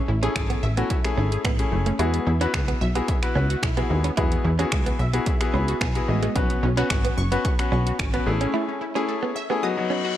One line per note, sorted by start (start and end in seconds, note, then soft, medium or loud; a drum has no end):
0.08 0.29 A1 loud
0.08 0.21 E4 medium
0.08 muted clean electric guitar stroke soft
0.23 0.62 A3 medium
0.23 0.32 C#4 medium
0.23 0.62 C#4 medium
0.23 0.62 E4 medium
0.23 0.34 G#4 medium
0.23 0.62 G#4 medium
0.23 closed hi-hat medium
0.36 0.56 G#1 loud
0.36 0.48 A4 medium
0.36 finger snap loud
0.36 kick loud
0.36 closed hi-hat medium
0.50 0.59 B3 medium
0.50 closed hi-hat medium
0.63 0.84 A1 loud
0.63 0.75 E5 loud
0.63 muted clean electric guitar stroke soft
0.77 0.97 A3 medium
0.77 0.87 B3 medium
0.77 0.97 C#4 medium
0.77 0.97 E4 medium
0.77 0.97 F#4 medium
0.77 closed hi-hat medium
0.90 1.02 E5 medium
0.90 kick loud
0.90 closed hi-hat medium
1.04 1.44 A3 medium
1.04 1.44 C#4 medium
1.04 1.44 E4 medium
1.04 1.44 G#4 medium
1.04 finger snap medium
1.04 closed hi-hat medium
1.17 1.38 G#1 loud
1.17 1.28 C#4 medium
1.32 1.43 G#4 medium
1.32 closed hi-hat soft
1.45 1.65 A1 loud
1.45 1.55 B3 medium
1.45 1.57 E4 medium
1.45 finger snap loud
1.45 kick loud
1.45 closed hi-hat medium
1.59 1.89 A3 medium
1.59 1.89 C#4 medium
1.59 1.70 C#4 medium
1.59 1.89 E4 medium
1.59 1.89 G#4 medium
1.59 closed hi-hat medium
1.72 1.93 F#1 medium
1.72 1.84 A3 medium
1.72 muted clean electric guitar stroke soft
1.86 1.96 A3 medium
1.86 1.97 C#4 medium
1.86 closed hi-hat soft
1.99 2.20 E2 loud
1.99 2.12 G#3 medium
1.99 2.29 B3 medium
1.99 2.29 E4 medium
1.99 2.10 E4 medium
1.99 2.30 F#4 medium
1.99 2.30 G#4 loud
1.99 closed hi-hat medium
2.14 2.25 B3 medium
2.14 closed hi-hat soft
2.27 2.47 E2 loud
2.27 2.39 E4 medium
2.27 muted clean electric guitar stroke soft
2.41 2.80 B3 medium
2.41 2.50 C#4 medium
2.41 2.80 E4 medium
2.41 2.80 F#4 medium
2.41 2.52 F#4 medium
2.41 2.80 B4 medium
2.41 closed hi-hat medium
2.54 2.74 C#2 loud
2.54 2.66 G#4 medium
2.54 finger snap loud
2.54 kick loud
2.54 closed hi-hat medium
2.68 2.77 B3 medium
2.68 closed hi-hat medium
2.81 3.02 B1 medium
2.81 2.93 E5 loud
2.81 muted clean electric guitar stroke soft
2.95 3.15 B3 medium
2.95 3.05 B3 medium
2.95 3.15 E4 medium
2.95 3.15 F#4 medium
2.95 3.15 G#4 medium
2.95 closed hi-hat medium
3.08 3.21 E5 medium
3.08 kick loud
3.08 closed hi-hat medium
3.23 3.62 B3 medium
3.23 3.62 E4 medium
3.23 3.62 F#4 medium
3.23 3.62 B4 medium
3.23 finger snap medium
3.23 closed hi-hat medium
3.35 3.56 C#2 medium
3.35 3.46 C#4 medium
3.50 3.61 F#4 medium
3.50 closed hi-hat soft
3.63 3.83 B1 medium
3.63 3.75 E4 loud
3.63 finger snap loud
3.63 kick loud
3.63 closed hi-hat medium
3.77 4.07 B3 medium
3.77 3.87 B3 medium
3.77 3.88 B3 medium
3.77 4.07 E4 medium
3.77 4.07 F#4 medium
3.77 4.07 G#4 medium
3.77 closed hi-hat soft
3.90 4.11 D#2 medium
3.90 4.02 G#3 medium
3.90 muted clean electric guitar stroke soft
4.04 4.15 B3 medium
4.04 4.14 C#4 medium
4.04 closed hi-hat medium
4.17 4.38 E2 loud
4.17 4.30 G#3 medium
4.17 4.48 B3 medium
4.17 4.28 E4 medium
4.17 4.48 E4 medium
4.17 4.48 F#4 medium
4.17 4.48 G#4 medium
4.17 kick loud
4.17 closed hi-hat medium
4.32 4.43 B3 medium
4.32 closed hi-hat soft
4.45 4.65 E2 loud
4.45 4.57 E4 medium
4.45 muted clean electric guitar stroke soft
4.59 4.98 B3 medium
4.59 4.68 C#4 medium
4.59 4.98 E4 medium
4.59 4.70 F#4 medium
4.59 4.99 F#4 medium
4.59 4.99 G#4 loud
4.59 closed hi-hat medium
4.72 4.93 C#2 medium
4.72 4.84 G#4 medium
4.72 finger snap loud
4.72 kick loud
4.72 closed hi-hat medium
4.86 4.96 B3 medium
4.86 closed hi-hat medium
4.99 5.20 B1 medium
4.99 5.12 E5 loud
4.99 muted clean electric guitar stroke soft
5.13 5.33 B3 medium
5.13 5.23 B3 medium
5.13 5.33 E4 medium
5.13 5.33 F#4 medium
5.13 5.33 G#4 medium
5.13 closed hi-hat medium
5.26 5.39 E5 medium
5.26 kick loud
5.26 closed hi-hat medium
5.41 5.80 B3 medium
5.41 5.80 E4 medium
5.41 5.80 F#4 medium
5.41 5.80 G#4 medium
5.41 finger snap medium
5.41 closed hi-hat medium
5.54 5.74 C#2 medium
5.54 5.64 C#4 medium
5.54 5.79 B5 medium
5.68 5.79 F#4 medium
5.68 closed hi-hat soft
5.81 6.02 B1 loud
5.81 5.91 B3 medium
5.81 5.93 E4 medium
5.81 5.95 G#5 medium
5.81 finger snap loud
5.81 kick loud
5.81 closed hi-hat medium
5.95 6.25 B3 medium
5.95 6.06 B3 medium
5.95 6.25 E4 medium
5.95 6.26 F#4 medium
5.95 6.26 G#4 medium
5.95 6.07 F#5 medium
5.95 closed hi-hat soft
6.08 6.29 A1 medium
6.08 6.21 G#3 medium
6.08 6.34 D#5 medium
6.08 muted clean electric guitar stroke soft
6.23 6.32 G#3 medium
6.23 6.34 B3 medium
6.23 closed hi-hat medium
6.35 6.56 B1 loud
6.35 6.48 F#3 medium
6.35 6.66 B3 medium
6.35 6.46 B3 medium
6.35 6.66 C#4 medium
6.35 6.66 F#4 medium
6.35 6.66 B4 loud
6.35 kick loud
6.35 closed hi-hat medium
6.50 6.61 B3 medium
6.50 closed hi-hat soft
6.63 6.84 B1 loud
6.63 6.75 C#4 medium
6.63 muted clean electric guitar stroke soft
6.77 7.17 B3 medium
6.77 7.17 C#4 medium
6.77 6.87 C#4 medium
6.77 6.88 F#4 loud
6.77 7.17 F#4 medium
6.77 7.17 B4 loud
6.77 closed hi-hat medium
6.90 7.11 G#1 loud
6.90 7.02 F#5 medium
6.90 finger snap loud
6.90 kick loud
6.90 closed hi-hat medium
7.05 7.14 B3 medium
7.05 closed hi-hat medium
7.17 7.38 F#1 loud
7.17 7.30 C#6 loud
7.17 muted clean electric guitar stroke soft
7.32 7.51 B3 medium
7.32 7.41 B3 medium
7.32 7.51 C#4 medium
7.32 7.52 F#4 medium
7.32 7.52 B4 medium
7.32 closed hi-hat medium
7.45 7.57 C#6 medium
7.45 kick loud
7.45 closed hi-hat medium
7.59 7.98 B3 medium
7.59 7.98 C#4 medium
7.59 7.99 F#4 medium
7.59 7.99 B4 medium
7.59 finger snap medium
7.59 closed hi-hat medium
7.72 7.93 B1 medium
7.72 7.82 C#4 medium
7.87 7.97 F#4 medium
7.87 closed hi-hat soft
7.99 8.20 G#1 medium
7.99 8.12 C#4 medium
7.99 finger snap loud
7.99 kick loud
7.99 closed hi-hat medium
8.13 8.26 B3 medium
8.13 8.23 B3 medium
8.13 8.25 B3 medium
8.13 8.25 C#4 medium
8.13 8.27 F#4 medium
8.13 8.27 B4 medium
8.13 closed hi-hat soft
8.26 8.47 A1 loud
8.26 8.81 A3 medium
8.26 8.39 A3 medium
8.26 8.81 C#4 medium
8.26 8.81 E4 medium
8.26 8.81 G#4 loud
8.26 muted clean electric guitar stroke soft
8.41 8.50 C#4 medium
8.41 8.52 C#4 medium
8.41 closed hi-hat medium
8.54 8.66 A3 medium
8.54 8.64 E4 medium
8.68 8.79 C#4 medium
8.81 8.93 E4 medium
8.81 muted clean electric guitar stroke soft
8.95 9.35 A3 medium
8.95 9.05 C#4 medium
8.95 9.35 C#4 medium
8.95 9.35 E4 medium
8.95 9.07 G#4 medium
8.95 9.35 G#4 medium
9.09 9.21 A4 medium
9.23 9.32 B3 medium
9.36 9.48 E5 loud
9.36 muted clean electric guitar stroke soft
9.50 9.63 A3 medium
9.50 9.59 B3 medium
9.50 9.63 C#4 medium
9.50 9.63 E4 medium
9.50 9.63 G#4 medium
9.63 9.74 F#3 medium
9.63 9.74 B3 medium
9.63 9.75 D#4 medium
9.63 9.75 F#4 loud
9.63 9.75 D#6 medium
9.63 reverse cymbal medium
9.77 10.17 F#3 medium
9.77 10.17 B3 medium
9.77 10.17 D#4 medium
9.77 10.17 F#4 medium
9.90 10.01 C#4 medium
10.05 10.16 F#4 medium